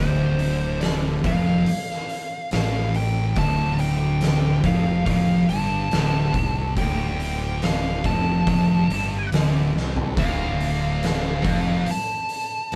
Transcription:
Already playing: D1 D2 C5
0.39 open hi-hat
0.81 D5, snare, open hi-hat
1.24 F1 F2 F5, kick, open hi-hat
1.66 open hi-hat
1.90 snare
2.09 open hi-hat
2.51 A1 A2 F5, snare, open hi-hat
2.94 G5, open hi-hat
3.36 D1 D2 A5, kick, open hi-hat
3.79 G5, open hi-hat
4.21 snare, open hi-hat
4.63 F1 F2 F5, kick, open hi-hat
5.06 F1 F2 F5, kick, open hi-hat
5.48 G1 G2 A5, open hi-hat
5.90 D1 D2, snare, open hi-hat
6.34 C2 C3, kick, open hi-hat
6.76 D1 D2 G5, kick, open hi-hat
7.20 open hi-hat
7.62 F5, snare, open hi-hat
8.04 F1 F2 A5, kick, open hi-hat
8.47 F1 F2, kick, open hi-hat
8.89 G1 G2, open hi-hat
9.32 D1 D2, snare, open hi-hat
9.74 C2 C3, snare
9.96 floor tom
10.17 D1 D2 F5, kick, open hi-hat
10.61 open hi-hat
11.03 snare, open hi-hat
11.44 F1 F2, kick, open hi-hat
11.86 open hi-hat
11.91 A5
12.29 open hi-hat
12.72 open hi-hat

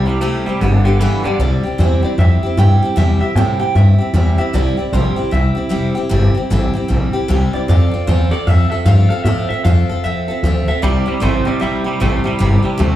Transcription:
Already playing: C2
0.06 C3 G3 C4 E4 G4
0.21 C3 G3 A3 C4 E4 G4
0.45 C3 G3 C4 E4 G4, muted upright bass stroke
0.60 G1 G2 D3 G3 B3 D4 G4
0.84 G2 D3 G3 B3 D4 G4
0.99 G2 D3 E3 G3 B3 D4 G4
1.23 G2 D3 G3 B3 D4 G4 D5, muted upright bass stroke
1.39 C2 C3 G3 C4 E4 G4 D5
1.63 C4 E4 G4, muted upright bass stroke
1.78 E2 C3 G3 C4 E4 G4 C5
2.03 C4 E4 G4 D5, muted upright bass stroke
2.18 F2 G3 C4 E4 G4 E5
2.42 C4 E4 G4, muted upright bass stroke
2.57 G2 C3 G3 C4 E4 G4 G5
2.81 E4 G4, muted upright bass stroke
2.85 C4
2.96 E2 C3 G3 C4 E4 G4 E5
3.20 C4 E4 G4 E5, muted upright bass stroke
3.35 A2 C3 G3 C4 E4 G4 G5
3.59 C4 E4 G4 G5, muted upright bass stroke
3.75 G2 G3 C4 E4 G4 E5
3.98 C4 E4 G4, muted upright bass stroke
4.13 E2 C3 G3 C4 E4 G4
4.38 C4 E4 G4 E5, muted upright bass stroke
4.53 C2 C3 G3 C4 E4 G4 D5
4.77 C4 E4 G4, muted upright bass stroke
4.92 A#1 C3 G3 C4 E4 G4 C5
5.16 C4 E4 G4, muted upright bass stroke
5.31 C2 G3 C4 E4 G4 E5
5.55 C4 E4 G4, muted upright bass stroke
5.69 F1 C3 G3 C4 E4 G4
5.95 C4 E4 G4
6.09 G1 C3 G3 C4 E4 G4
6.35 C4 E4 G4, muted upright bass stroke
6.50 A1 C3 G3 C4 E4 G4
6.73 C4 E4 G4, muted upright bass stroke
6.88 A#1 G3 C4 E4 G4
7.13 C4 E4 G4, muted upright bass stroke
7.28 C2 C3 G3 C4 E4 G4
7.53 C4 E4 G4 D5, muted upright bass stroke
7.68 F2 F3 C4 F4 A4 D5
7.91 C4 F4 A4, muted upright bass stroke
8.07 E2 F3 C4 F4 A4 C5
8.31 C4 F4 A4 D5, muted upright bass stroke
8.47 F2 F3 C4 F4 A4 E5
8.70 F4 A4 E5, muted upright bass stroke
8.74 C4
8.85 G2 F3 C4 F4 A4 F5
9.09 C4 F4 A4 F5, muted upright bass stroke
9.24 A2 F3 C4 F4 A4 E5
9.49 F4 A4 E5, muted upright bass stroke
9.54 C4
9.64 F2 F3 C4 F4 A4 F5
9.89 C4 F4 A4, muted upright bass stroke
10.04 E2 F3 C4 F4 A4 E5
10.28 C4 F4 A4, muted upright bass stroke
10.43 D2 F3 C4 F4 A4
10.68 C4 F4 A4 E5, muted upright bass stroke
10.82 C2 C3 G3 C4 E4 G4 D5
11.06 C3 G3 C4 E4 G4, muted upright bass stroke
11.20 A1 C3 G3 A3 C4 E4 G4 C5
11.45 C3 G3 C4 E4 G4 D5, muted upright bass stroke
11.60 A#1 C3 G3 C4 E4 G4 E5
11.84 C3 G3 C4 E4 G4, muted upright bass stroke
12.00 A1 C3 G3 A3 C4 E4 G4
12.24 C3 G3 C4 E4 G4, muted upright bass stroke
12.39 G1 C3 G3 C4 E4 G4
12.63 C3 G3 C4 E4 G4, muted upright bass stroke
12.78 D2 C3 G3 A3 C4 E4 G4

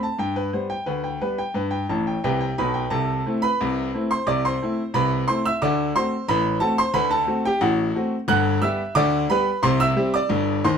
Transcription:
0.03 A5
0.18 G2 G5
0.36 B4
0.53 G3 B3 C5
0.70 G5
0.86 D2 B4
1.04 G5
1.22 G3 B3 B4
1.38 G5
1.54 G2 B4
1.71 G5
1.89 A1 A2 A5
2.07 G5
2.24 C2 C3 G4 B4 G5
2.41 G5
2.58 B1 B2 B4 B5
2.74 G5
2.90 C2 C3 A4 A5
3.26 A3 C4 E4
3.42 B4 B5
3.61 C2 C3
3.94 A3 C4 E4
4.11 C5 C6
4.27 C2 C3 D5 D6
4.45 C5 C6
4.62 A3 C4 E4
4.94 C2 C3 B4 B5
5.28 A3 C4 E4 C5 C6
5.45 E5 E6
5.62 D2 D3 D5 D6
5.96 A3 C4 F#4 C5 C6
6.28 A1 A2 B4 B5
6.60 A3 C4 F#4 A4 A5
6.78 C5 C6
6.94 D2 D3 B4 B5
7.11 A4 A5
7.27 A3 C4 F#4
7.45 G4 G5
7.61 A1 A2 F#4 F#5
7.95 A3 C4 F#4
8.28 G1 G2 F#5 F#6
8.62 G3 B3 G4 E5 E6
8.95 D2 D3 D5 D6
9.30 G3 B3 G4 B4 B5
9.63 C2 C3 C5 C6
9.80 E5 E6
9.96 G3 C4 G4
10.14 D5 D6
10.29 G1 G2
10.64 D#2 D#3 C5 C6

